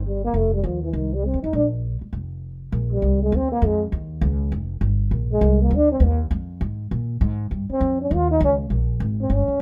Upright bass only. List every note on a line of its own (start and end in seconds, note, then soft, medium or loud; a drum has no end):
0.00 0.31 G1 medium
0.34 0.62 F1 medium
0.64 0.91 D#2 medium
0.93 1.30 C2 medium
1.34 1.43 D#2 medium
1.44 1.53 F2 medium
1.53 1.98 A#1 medium
2.01 muted upright bass stroke soft
2.13 2.70 F1 medium
2.72 3.02 A#1 medium
3.02 3.31 C2 medium
3.32 3.61 D2 medium
3.62 3.91 F2 medium
3.92 4.21 D#2 medium
4.21 4.51 C#2 loud
4.52 4.80 F1 medium
4.81 5.11 G1 medium
5.11 5.41 A#1 medium
5.41 5.70 C2 medium
5.71 5.99 D2 medium
6.00 6.30 D#2 medium
6.31 6.60 F2 medium
6.61 6.90 G#2 medium
6.91 7.20 A#2 medium
7.21 7.50 G#2 medium
7.51 7.68 G2 medium
7.69 muted upright bass stroke soft
7.81 8.10 F2 medium
8.11 8.40 D#2 medium
8.41 8.70 C#2 loud
8.70 8.99 A#1 medium
9.00 9.29 G#1 medium
9.30 9.47 G1 medium
9.48 muted upright bass stroke soft